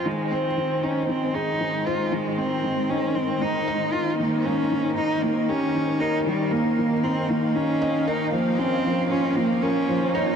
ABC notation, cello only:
X:1
M:4/4
L:1/8
Q:1/4=116
K:Ebmix
V:1 name="Cello"
A, C2 D C E2 F | A, C2 D C E2 F | B, D2 E B, D2 E | G, B,2 C B, D2 E |
B, C2 D B, D2 E |]